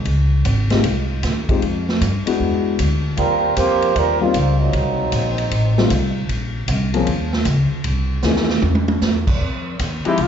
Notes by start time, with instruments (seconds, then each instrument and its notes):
0.05 upright bass C#2, kick, ride
0.45 upright bass G#1, kick, hi-hat pedal, ride
0.70 grand piano G#3 C4 D#4 F4 G4, snare, ride
0.84 upright bass C2, kick, ride
1.23 upright bass D#2, kick, snare, hi-hat pedal, ride
1.49 grand piano G#3 C4 D#4 F4 G4, kick, ride
1.62 upright bass F2, kick, ride
1.89 snare
2.01 upright bass G2, kick, hi-hat pedal, ride
2.26 grand piano G#3 B3 D4 E4 F#4, muted upright bass stroke, ride
2.40 upright bass E2, kick
2.79 upright bass D2, kick, hi-hat pedal, ride
3.17 upright bass D#2, trombone section G3 C4 F4 A#4, kick, ride
3.56 upright bass F2, trombone section A#3 F4 G4 C5, kick, hi-hat pedal, ride
3.82 ride
3.96 upright bass D#2, trombone section G3 C4 F4 A#4, kick, ride
4.21 trombone section G3 A#3 C4 F4, grand piano G3 A#3 C4 D#4 F4
4.34 upright bass C#2, kick, hi-hat pedal, ride
4.60 trombone section F#3 A#3 C4 D#4
4.73 upright bass C2, kick, ride
5.12 upright bass A#1, kick, hi-hat pedal, ride
5.38 ride
5.51 upright bass A1, kick, ride
5.78 grand piano G3 A3 C4 D#4 F4, snare
5.90 upright bass C2, kick, hi-hat pedal, ride
6.29 upright bass A#1, kick, ride
6.68 upright bass C2, kick, hi-hat pedal, ride
6.94 grand piano F3 A#3 C4 C#4 G#4, ride
7.07 upright bass D#2, kick, ride
7.33 snare
7.45 upright bass C#2, kick, hi-hat pedal, ride
7.71 muted upright bass stroke
7.84 upright bass C2, kick, ride
8.22 upright bass D#2, grand piano E3 A#3 C4 D#4 G#4, snare, hi-hat pedal
8.36 snare
8.49 snare
8.62 upright bass E2, high tom
8.75 high tom
8.88 high tom
9.01 upright bass F#2, snare, hi-hat pedal
9.15 upright bass E2
9.27 upright bass C2, kick, crash
9.41 upright bass F2, kick
9.79 upright bass D#2, kick, hi-hat pedal, ride
10.05 grand piano F3 G#3 C4 D#4 G4, saxophone section F3 G#3 D#4 G4, muted trumpet E4, muted upright bass stroke, ride
10.18 upright bass C2, kick, ride
10.22 muted trumpet F4